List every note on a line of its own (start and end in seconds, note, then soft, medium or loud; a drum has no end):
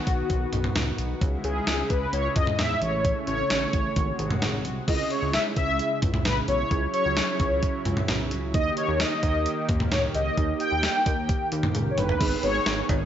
0.00 1.18 D#3 medium
0.00 1.18 B3 medium
0.00 0.95 F#4 medium
0.00 1.18 F#4 medium
0.07 0.23 B1 loud
0.07 kick medium
0.07 closed hi-hat medium
0.30 0.46 B1 loud
0.30 kick loud
0.30 closed hi-hat medium
0.53 0.69 B1 medium
0.53 closed hi-hat medium
0.53 mid tom loud
0.64 mid tom medium
0.64 mid tom loud
0.75 0.92 C#2 loud
0.75 snare loud
0.75 closed hi-hat medium
0.98 1.15 B1 medium
0.98 closed hi-hat medium
1.21 1.37 C#2 loud
1.21 2.80 C#3 medium
1.21 2.80 G#3 medium
1.21 3.94 E4 medium
1.21 kick loud
1.21 closed hi-hat medium
1.44 1.60 C#2 loud
1.44 1.91 G#4 medium
1.44 closed hi-hat medium
1.67 1.83 C#2 loud
1.67 snare loud
1.67 closed hi-hat medium
1.90 2.06 C#2 loud
1.90 2.14 B4 medium
1.90 kick medium
1.90 closed hi-hat medium
2.13 2.29 C#2 loud
2.13 2.34 C#5 loud
2.13 closed hi-hat medium
2.36 2.52 C#2 loud
2.36 2.59 D#5 loud
2.36 kick medium
2.36 closed hi-hat medium
2.36 mid tom medium
2.47 mid tom loud
2.59 2.75 E2 loud
2.59 2.80 E5 loud
2.59 snare loud
2.59 closed hi-hat medium
2.82 3.14 A1 medium
2.82 3.95 C#3 medium
2.82 3.95 A3 medium
2.82 3.26 C#5 loud
2.82 closed hi-hat medium
3.05 kick loud
3.05 closed hi-hat medium
3.27 3.44 A1 loud
3.27 4.61 C#5 loud
3.27 closed hi-hat medium
3.50 3.66 A1 loud
3.50 snare loud
3.50 closed hi-hat medium
3.73 3.89 A1 medium
3.73 kick medium
3.73 closed hi-hat medium
3.96 4.12 G#1 loud
3.96 4.87 C3 medium
3.96 4.87 G#3 medium
3.96 4.87 F#4 medium
3.96 kick medium
3.96 closed hi-hat medium
4.19 4.35 G#1 loud
4.19 closed hi-hat medium
4.30 mid tom loud
4.42 4.66 G#1 loud
4.42 snare loud
4.42 closed hi-hat medium
4.65 4.81 C2 medium
4.65 closed hi-hat medium
4.88 5.04 C#2 loud
4.88 8.51 C#3 medium
4.88 6.69 G#3 medium
4.88 6.67 C#4 medium
4.88 8.51 E4 medium
4.88 6.67 E4 medium
4.88 6.67 G#4 medium
4.88 5.12 D#5 loud
4.88 kick loud
4.88 closed hi-hat medium
4.88 crash medium
5.10 5.34 C#5 medium
5.10 closed hi-hat medium
5.22 5.38 C#2 medium
5.33 5.44 E5 loud
5.33 snare loud
5.33 closed hi-hat medium
5.56 5.81 C#2 loud
5.56 5.99 E5 loud
5.56 kick medium
5.56 closed hi-hat medium
5.79 closed hi-hat medium
6.02 6.27 C#2 medium
6.02 kick loud
6.02 closed hi-hat medium
6.02 mid tom loud
6.14 mid tom loud
6.25 6.41 B1 medium
6.25 6.36 B4 loud
6.25 snare loud
6.25 closed hi-hat medium
6.48 6.64 B1 medium
6.48 6.93 C#5 loud
6.48 closed hi-hat medium
6.71 6.87 C#2 loud
6.71 8.52 F#3 medium
6.71 8.51 C#4 medium
6.71 8.51 E4 medium
6.71 8.51 G#4 medium
6.71 kick loud
6.71 closed hi-hat medium
6.94 7.82 C#5 loud
6.94 closed hi-hat medium
7.05 7.21 C#2 loud
7.17 snare loud
7.17 closed hi-hat medium
7.40 7.64 C#2 loud
7.40 kick medium
7.40 closed hi-hat medium
7.63 kick loud
7.63 closed hi-hat medium
7.85 8.02 C#2 loud
7.85 closed hi-hat medium
7.85 mid tom loud
7.97 mid tom loud
8.08 8.33 B1 loud
8.08 snare loud
8.08 closed hi-hat medium
8.31 8.56 C#2 medium
8.31 closed hi-hat medium
8.54 8.70 D#2 loud
8.54 12.17 D#3 medium
8.54 10.34 A#3 medium
8.54 12.17 A#3 medium
8.54 10.34 D#4 medium
8.54 10.34 G4 medium
8.54 12.17 G4 medium
8.54 8.78 D#5 loud
8.54 kick loud
8.54 closed hi-hat medium
8.77 8.98 C#5 loud
8.77 closed hi-hat medium
8.89 9.05 D#2 loud
9.00 9.22 D#5 loud
9.00 snare loud
9.00 closed hi-hat medium
9.23 9.47 D#2 loud
9.23 9.66 D#5 loud
9.23 kick medium
9.23 closed hi-hat medium
9.46 closed hi-hat medium
9.69 9.93 D#2 loud
9.69 kick medium
9.69 closed hi-hat medium
9.69 mid tom loud
9.80 mid tom loud
9.92 10.08 C#2 loud
9.92 10.02 C#5 medium
9.92 snare loud
9.92 closed hi-hat medium
10.15 10.31 C#2 medium
10.15 10.62 D#5 loud
10.15 closed hi-hat medium
10.37 10.54 D#2 loud
10.37 12.17 A#3 medium
10.37 12.17 D#4 medium
10.37 12.17 G4 medium
10.37 kick loud
10.37 closed hi-hat medium
10.60 11.48 G5 loud
10.60 closed hi-hat medium
10.72 10.88 D#2 medium
10.83 snare loud
10.83 closed hi-hat medium
11.06 11.30 D#2 loud
11.06 kick medium
11.06 closed hi-hat medium
11.29 kick loud
11.29 closed hi-hat medium
11.52 11.68 D#2 loud
11.52 closed hi-hat medium
11.63 mid tom loud
11.75 11.91 C#2 medium
11.75 closed hi-hat medium
11.75 high tom medium
11.91 11.98 C#5 medium
11.98 12.14 G1 medium
11.98 12.45 B4 loud
11.98 closed hi-hat medium
11.98 mid tom medium
12.09 floor tom medium
12.21 12.37 G#1 loud
12.21 13.05 D#3 medium
12.21 13.05 B3 medium
12.21 13.05 D#4 medium
12.21 13.05 G#4 medium
12.21 kick loud
12.21 closed hi-hat medium
12.21 crash loud
12.43 12.60 G#1 loud
12.43 12.86 C#5 loud
12.43 closed hi-hat medium
12.66 12.82 G#1 loud
12.66 snare loud
12.66 closed hi-hat medium
12.89 13.05 G#1 loud
12.89 kick loud
12.89 closed hi-hat medium
12.89 cowbell medium